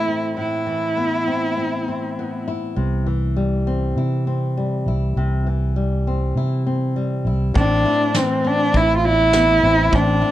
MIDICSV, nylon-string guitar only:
0, 0, Header, 1, 2, 480
1, 0, Start_track
1, 0, Key_signature, 0, "minor"
1, 0, Tempo, 597015
1, 297, Time_signature, 4, 2, 24, 8
1, 8292, End_track
2, 0, Start_track
2, 0, Title_t, "Nylon-string guitar"
2, 0, Program_c, 0, 24
2, 0, Note_on_c, 0, 45, 57
2, 0, Note_on_c, 0, 52, 51
2, 0, Note_on_c, 0, 57, 45
2, 0, Note_on_c, 0, 64, 52
2, 64, Note_on_c, 0, 60, 48
2, 272, Note_off_c, 0, 57, 0
2, 286, Note_off_c, 0, 45, 0
2, 296, Note_on_c, 0, 45, 58
2, 531, Note_off_c, 0, 52, 0
2, 534, Note_on_c, 0, 52, 50
2, 780, Note_on_c, 0, 59, 48
2, 804, Note_off_c, 0, 60, 0
2, 1024, Note_on_c, 0, 60, 51
2, 1260, Note_off_c, 0, 60, 0
2, 1263, Note_on_c, 0, 60, 46
2, 1508, Note_off_c, 0, 60, 0
2, 1512, Note_on_c, 0, 60, 48
2, 1744, Note_off_c, 0, 59, 0
2, 1759, Note_on_c, 0, 59, 47
2, 1980, Note_off_c, 0, 64, 0
2, 1990, Note_on_c, 0, 64, 53
2, 2204, Note_off_c, 0, 59, 0
2, 2218, Note_off_c, 0, 45, 0
2, 2222, Note_on_c, 0, 48, 60
2, 2461, Note_off_c, 0, 52, 0
2, 2464, Note_off_c, 0, 48, 0
2, 2464, Note_on_c, 0, 52, 53
2, 2705, Note_on_c, 0, 55, 48
2, 2947, Note_off_c, 0, 60, 0
2, 2950, Note_on_c, 0, 60, 54
2, 3193, Note_off_c, 0, 64, 0
2, 3197, Note_on_c, 0, 64, 54
2, 3430, Note_off_c, 0, 60, 0
2, 3433, Note_on_c, 0, 60, 46
2, 3667, Note_off_c, 0, 55, 0
2, 3677, Note_on_c, 0, 55, 44
2, 3919, Note_off_c, 0, 64, 0
2, 3922, Note_on_c, 0, 64, 54
2, 4158, Note_on_c, 0, 48, 63
2, 4392, Note_off_c, 0, 52, 0
2, 4395, Note_off_c, 0, 48, 0
2, 4395, Note_on_c, 0, 52, 48
2, 4624, Note_off_c, 0, 55, 0
2, 4633, Note_on_c, 0, 55, 49
2, 4880, Note_off_c, 0, 60, 0
2, 4883, Note_on_c, 0, 60, 50
2, 5115, Note_off_c, 0, 64, 0
2, 5125, Note_on_c, 0, 64, 52
2, 5350, Note_off_c, 0, 60, 0
2, 5359, Note_on_c, 0, 60, 45
2, 5587, Note_off_c, 0, 55, 0
2, 5597, Note_on_c, 0, 55, 44
2, 5834, Note_off_c, 0, 64, 0
2, 5843, Note_on_c, 0, 64, 51
2, 6043, Note_off_c, 0, 52, 0
2, 6045, Note_off_c, 0, 60, 0
2, 6064, Note_on_c, 0, 45, 79
2, 6073, Note_off_c, 0, 55, 0
2, 6073, Note_on_c, 0, 60, 64
2, 6306, Note_off_c, 0, 64, 0
2, 6316, Note_on_c, 0, 64, 66
2, 6549, Note_on_c, 0, 52, 66
2, 6786, Note_off_c, 0, 60, 0
2, 6789, Note_on_c, 0, 60, 66
2, 7261, Note_off_c, 0, 45, 0
2, 7266, Note_on_c, 0, 40, 65
2, 7511, Note_on_c, 0, 59, 64
2, 7741, Note_off_c, 0, 60, 0
2, 7744, Note_on_c, 0, 60, 62
2, 7955, Note_off_c, 0, 59, 0
2, 7971, Note_on_c, 0, 45, 80
2, 7972, Note_off_c, 0, 60, 0
2, 7975, Note_on_c, 0, 60, 69
2, 7980, Note_off_c, 0, 40, 0
2, 8211, Note_off_c, 0, 64, 0
2, 8214, Note_on_c, 0, 64, 71
2, 8292, Note_off_c, 0, 45, 0
2, 8292, Note_off_c, 0, 52, 0
2, 8292, Note_off_c, 0, 60, 0
2, 8292, Note_off_c, 0, 64, 0
2, 8292, End_track
0, 0, End_of_file